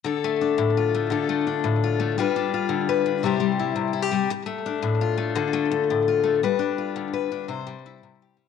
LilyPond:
\new Staff \with { instrumentName = "Steel-string acoustic guitar" } { \time 12/8 \key d \minor \tempo 4. = 113 << { a'4 d'4 f'4 a'4 d'4 f'4 | <d' f' b'>4 f'4 b'4 <g e' g' c''>4 e'4 e'16 g'8. | r4 d'4 f'4 a'2 f'4 | b'4 f'4 b'4 c''4 e'4 g'4 | } \\ { d8 a4 a,4 a8 d8 a4 a,4 a8 | g8 d'4 d4 d'8 c8 g4 c4 g8 | r8 a4 a,4 a8 d8 a4 a,4 a8 | g8 d'4 d4 d'8 c8 g4 c4 g8 | } >> }